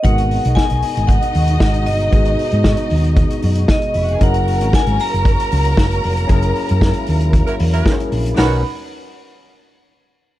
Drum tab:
HH |xxox-xoxxxox-xox|xxox-xoxxxox-xox|xxox-xoxxxox-xox|xxox-xoxxxox-xox|
SD |----o-------o---|----o-------o---|----o-------o---|----o-------o---|
BD |o---o---o---o---|o---o---o---o---|o---o---o---o---|o---o---o---o---|

HH |o---------------|
SD |o---------------|
BD |----------------|